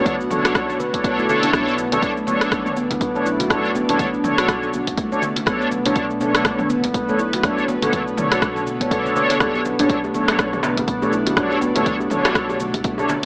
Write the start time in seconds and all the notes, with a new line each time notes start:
Already playing: B2 A3 D4 F#4 A4 C#5
0.05 kick, closed hi-hat, mid tom, muted conga, cabasa
0.20 cabasa
0.30 B1 D4 A4 C#5, mid tom, muted conga, high conga, cabasa
0.45 F#4, cross-stick, closed hi-hat, cabasa
0.55 kick, cross-stick, closed hi-hat, cabasa
0.70 muted conga, cabasa
0.80 B4, high conga, cabasa
0.94 D4 A4 C#5, kick, closed hi-hat, muted conga, cabasa
1.04 B3, kick, closed hi-hat, cabasa
1.18 D2 E4, muted conga, cabasa
1.29 D4 A4 C#5, high conga, cabasa
1.43 E4, closed hi-hat, muted conga, high conga, cabasa
1.53 B1 B3 D4 A4 C#5, kick, cross-stick, closed hi-hat, low conga, cabasa
1.68 B3, cabasa
1.78 B1, muted conga, cabasa
1.92 B1 D4 A4 C#5, closed hi-hat, high conga, low conga, cabasa
2.02 kick, closed hi-hat, muted conga, cabasa
2.17 A3, cabasa
2.27 B1 B3 D4 A4 C#5, muted conga, high conga, cabasa
2.41 cross-stick, closed hi-hat, cabasa
2.52 kick, cross-stick, closed hi-hat, cabasa
2.66 mid tom, muted conga, cabasa
2.76 A1 B3, high conga, cabasa
2.91 kick, closed hi-hat, muted conga, high conga, cabasa
3.01 B4, kick, closed hi-hat, cabasa
3.15 A1 A3 D4 A4 C#5, muted conga, cabasa
3.25 B1 E4, cabasa
3.40 F#4, closed hi-hat, muted conga, high conga, cabasa
3.50 D4 A4 C#5, kick, cross-stick, closed hi-hat, low conga, cabasa
3.65 cabasa
3.75 B1 B3, muted conga, cabasa
3.89 B1 D4 A4 C#5, closed hi-hat, high conga, low conga, cabasa
3.99 kick, closed hi-hat, mid tom, muted conga, cabasa
4.14 cabasa
4.24 B1 D4 A4 C#5, mid tom, muted conga, high conga, cabasa
4.38 F#4, cross-stick, closed hi-hat, cabasa
4.48 kick, cross-stick, closed hi-hat, cabasa
4.63 muted conga, cabasa
4.73 B1, high conga, cabasa
4.87 E2, kick, closed hi-hat, muted conga, cabasa
4.97 A3, kick, closed hi-hat, cabasa
5.12 D4 A4 C#5, muted conga, cabasa
5.22 high conga, cabasa
5.36 closed hi-hat, muted conga, high conga, cabasa
5.46 B1 B3 D4 A4 C#5, kick, cross-stick, closed hi-hat, low conga, cabasa
5.61 B3, cabasa
5.71 B1, muted conga, cabasa
5.86 B1 D4 A4 C#5, closed hi-hat, high conga, low conga, cabasa
5.96 kick, closed hi-hat, muted conga, cabasa
6.10 A3, cabasa
6.20 B1 B3 D4 A4 C#5, muted conga, high conga, cabasa
6.35 cross-stick, closed hi-hat, cabasa
6.45 kick, cross-stick, closed hi-hat, cabasa
6.59 mid tom, muted conga, cabasa
6.70 A1 B3, high conga, cabasa
6.84 kick, closed hi-hat, muted conga, high conga, cabasa
6.94 B4, kick, closed hi-hat, cabasa
7.08 A1 A3 D4 A4 C#5, muted conga, cabasa
7.19 B1 E4, cabasa
7.33 F#4, closed hi-hat, muted conga, high conga, cabasa
7.43 D4 A4 C#5, kick, cross-stick, closed hi-hat, low conga, cabasa
7.58 cabasa
7.68 B1 B3, muted conga, cabasa
7.82 B1 D4 A4 C#5, closed hi-hat, high conga, low conga, cabasa
7.93 kick, closed hi-hat, mid tom, muted conga, cabasa
8.08 cabasa
8.17 B1 D4 A4 C#5, mid tom, muted conga, high conga, cabasa
8.32 F#4, cross-stick, closed hi-hat, cabasa
8.42 kick, cross-stick, closed hi-hat, cabasa
8.56 muted conga, cabasa
8.67 high conga, cabasa
8.81 B3 D4 A4 C#5, kick, closed hi-hat, muted conga, cabasa
8.91 A4, kick, closed hi-hat, cabasa
9.05 muted conga, high conga, cabasa
9.15 F#1 D4 A4 C#5, high conga, cabasa
9.30 F#1 D4, closed hi-hat, muted conga, high conga, cabasa
9.40 B1 B3 D4 A4 C#5, kick, cross-stick, closed hi-hat, low conga, djembe bass, cabasa
9.54 B3, djembe tone, cabasa
9.65 B1, muted conga, cabasa
9.79 B1 D4 A4 C#5, closed hi-hat, djembe tone, high conga, low conga, cabasa
9.89 kick, closed hi-hat, muted conga, cabasa
10.04 A3, djembe tone, cabasa
10.14 B1 B3 D4 A4 C#5, muted conga, high conga, cabasa
10.28 cross-stick, closed hi-hat, djembe slap, djembe tone, cabasa
10.39 kick, cross-stick, closed hi-hat, cabasa
10.53 mid tom, muted conga, djembe tone, cabasa
10.63 A1 B3, djembe slap, high conga, cabasa
10.77 kick, closed hi-hat, muted conga, high conga, djembe tone, cabasa
10.88 B4, kick, closed hi-hat, cabasa
11.02 A1 A3 D4 A4 C#5, muted conga, djembe tone, cabasa
11.12 B1 E4, cabasa
11.26 F#4, closed hi-hat, muted conga, djembe tone, high conga, cabasa
11.36 D4 A4 C#5, kick, cross-stick, closed hi-hat, djembe bass, low conga, cabasa
11.51 djembe tone, cabasa
11.61 B1 B3, muted conga, cabasa
11.75 B1 A3 D4 A4 C#5, closed hi-hat, djembe tone, high conga, low conga, cabasa
11.86 kick, closed hi-hat, mid tom, cabasa
12.00 djembe tone, cabasa
12.10 B1 D4 A4 C#5, mid tom, muted conga, high conga, cabasa
12.25 F#4, cross-stick, closed hi-hat, djembe slap, djembe tone, cabasa
12.35 kick, cross-stick, closed hi-hat, cabasa
12.50 muted conga, djembe tone, cabasa
12.60 B1, high conga, cabasa
12.74 E2, kick, closed hi-hat, muted conga, djembe tone, cabasa
12.84 A3, kick, closed hi-hat, cabasa
12.98 D4 A4 C#5, muted conga, djembe tone, cabasa
13.09 djembe slap, high conga, cabasa